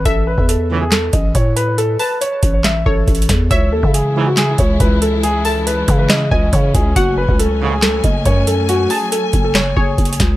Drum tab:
HH |x-----------x-----------x-----x-----x-----x-----|x-----o-----x-----x-----x-----------x-x-x-x-----|x-----------x-----------x-----x-----x-----x-----|x-----o-----x-----x-----x-----------x-----x-----|
CP |------------------------x-----------------------|------------------------x-----------------------|------------------------x-----------------------|------------------------x-----------------------|
SD |------------------------o-----------------------|------------------------o-----------------o-----|------------------------o-----------------------|------------------------o-----------------------|
BD |o--------o--------------------o-----o-----------|------------------o-----------o-----o-----o-----|o--------o--------------------o-----o-----------|------------------o-----------o-----o-----o-----|

HH |x-----------x-----------x-----x-----x-----x-----|x-----o-----x-----x-----x-----------x-x-x-x-----|
CP |------------------------x-----------------------|------------------------x-----------------------|
SD |------------------------o-----------------------|------------------------o-----------------o-----|
BD |o--------o--------------------o-----o-----------|------------------o-----------o-----o-----o-----|